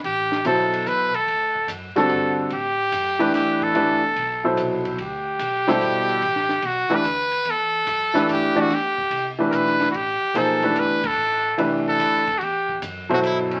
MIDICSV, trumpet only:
0, 0, Header, 1, 2, 480
1, 0, Start_track
1, 0, Tempo, 412371
1, 40, Time_signature, 3, 2, 24, 8
1, 15830, End_track
2, 0, Start_track
2, 0, Title_t, "Trumpet"
2, 0, Program_c, 0, 56
2, 54, Note_on_c, 0, 67, 89
2, 494, Note_off_c, 0, 67, 0
2, 542, Note_on_c, 0, 69, 81
2, 1017, Note_on_c, 0, 71, 86
2, 1035, Note_off_c, 0, 69, 0
2, 1340, Note_on_c, 0, 69, 79
2, 1358, Note_off_c, 0, 71, 0
2, 1969, Note_off_c, 0, 69, 0
2, 2307, Note_on_c, 0, 69, 89
2, 2743, Note_off_c, 0, 69, 0
2, 2947, Note_on_c, 0, 67, 83
2, 3848, Note_off_c, 0, 67, 0
2, 3902, Note_on_c, 0, 67, 80
2, 4230, Note_on_c, 0, 69, 78
2, 4248, Note_off_c, 0, 67, 0
2, 5335, Note_off_c, 0, 69, 0
2, 5836, Note_on_c, 0, 67, 96
2, 7752, Note_on_c, 0, 66, 90
2, 7770, Note_off_c, 0, 67, 0
2, 8095, Note_on_c, 0, 71, 109
2, 8112, Note_off_c, 0, 66, 0
2, 8734, Note_on_c, 0, 69, 96
2, 8751, Note_off_c, 0, 71, 0
2, 9668, Note_off_c, 0, 69, 0
2, 9690, Note_on_c, 0, 67, 87
2, 10018, Note_on_c, 0, 66, 87
2, 10035, Note_off_c, 0, 67, 0
2, 10173, Note_on_c, 0, 67, 92
2, 10190, Note_off_c, 0, 66, 0
2, 10852, Note_off_c, 0, 67, 0
2, 11060, Note_on_c, 0, 70, 65
2, 11119, Note_on_c, 0, 71, 88
2, 11136, Note_off_c, 0, 70, 0
2, 11502, Note_off_c, 0, 71, 0
2, 11537, Note_on_c, 0, 66, 70
2, 11593, Note_on_c, 0, 67, 87
2, 11610, Note_off_c, 0, 66, 0
2, 12071, Note_on_c, 0, 69, 75
2, 12089, Note_off_c, 0, 67, 0
2, 12564, Note_on_c, 0, 71, 87
2, 12581, Note_off_c, 0, 69, 0
2, 12879, Note_on_c, 0, 69, 86
2, 12897, Note_off_c, 0, 71, 0
2, 13499, Note_off_c, 0, 69, 0
2, 13837, Note_on_c, 0, 69, 93
2, 14416, Note_on_c, 0, 66, 61
2, 14433, Note_off_c, 0, 69, 0
2, 14474, Note_on_c, 0, 67, 82
2, 14492, Note_off_c, 0, 66, 0
2, 14939, Note_off_c, 0, 67, 0
2, 15294, Note_on_c, 0, 66, 80
2, 15354, Note_off_c, 0, 66, 0
2, 15433, Note_on_c, 0, 64, 80
2, 15572, Note_off_c, 0, 64, 0
2, 15753, Note_on_c, 0, 62, 72
2, 15830, Note_off_c, 0, 62, 0
2, 15830, End_track
0, 0, End_of_file